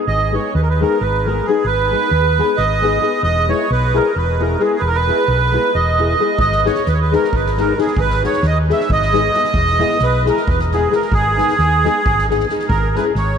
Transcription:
0.07 G#1 D#5
0.32 G#3 B3 D#4 G#4 C#5
0.55 D#2 B4
0.62 A#4
0.69 B4
0.80 G#3 B3 D#4 G#4 A#4
1.01 G#1 B4
1.25 G#3 B3 D#4 G#4 A#4
1.45 G#3 B3 D#4 G#4
1.64 G#1 B4
1.91 G#3 B3 D#4 G#4
2.11 D#2
2.38 G#3 B3 D#4 G#4
2.57 G#1 D#5
2.81 G#3 B3 D#4 G#4
3.00 G#3 B3 D#4 G#4
3.23 E1 D#5
3.47 G#3 B3 E4 G#4 C#5
3.70 B1 B4
3.93 G#3 B3 E4 G#4 A#4
4.16 E1 B4
4.39 G#3 B3 E4 G#4 A#4
4.59 G#3 B3 E4 G#4
4.79 E1 B4
4.87 A#4
4.95 B4
5.07 G#3 B3 E4 G#4
5.28 B1
5.52 G#3 B3 E4 G#4
5.75 E1 D#5
5.98 G#3 B3 E4 G#4
6.19 G#3 B3 E4 G#4
6.39 G#1 D#5, kick
6.52 snare
6.65 G#3 B3 D#4 G#4 C#5, snare
6.75 snare
6.86 D#2 B4, snare
6.94 C#5
7.02 B4
7.11 G#3 B3 D#4 G#4 A#4, snare
7.24 snare
7.33 G#1 B4, kick
7.46 snare
7.57 G#3 B3 D#4 G#4 A#4, snare
7.77 G#3 B3 D#4 G#4, snare
7.81 G#4
7.87 snare
7.97 G#1 B4, kick
8.10 snare
8.22 G#3 B3 D#4 G#4 C#5, snare
8.33 snare
8.43 D#2, snare
8.47 D#5
8.68 G#3 B3 D#4 G#4, snare
8.72 E5
8.80 snare
8.89 G#1 D#5, kick
9.02 snare
9.13 G#3 B3 D#4 G#4, snare
9.34 G#3 B3 D#4 G#4, snare
9.44 snare
9.53 E1, kick
9.67 snare
9.79 G#3 B3 E4 G#4, snare
9.90 snare
9.99 B1 B4, snare
10.24 G#3 B3 E4 G#4, snare
10.29 A#4
10.37 snare
10.47 E1 B4, kick
10.59 snare
10.71 G#3 B3 E4 G#4, snare
10.90 G#3 B3 E4 G#4, snare
10.94 A#4
11.02 snare
11.12 G#1 G#4, kick
11.37 G#3 B3 D#4 G#4, snare
11.48 snare
11.59 D#2, snare
11.84 G#3 B3 D#4 G#4, snare
12.06 G#1, kick
12.18 snare
12.29 G#3 B3 D#4 G#4, snare
12.40 snare
12.49 G#3 B3 D#4 G#4, snare
12.59 snare
12.68 G#1 A#4, kick
12.95 G#3 C#4 E4 G#4 B4, snare
13.15 G#1 C#5, snare

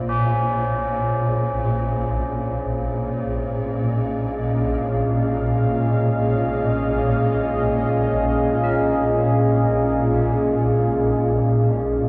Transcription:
Already playing: A#1 A#2 A#3 F4 C5 C#5
0.09 A#2 C#4
0.91 G#4
1.13 C#4 F5
3.77 D#5
8.64 A#4

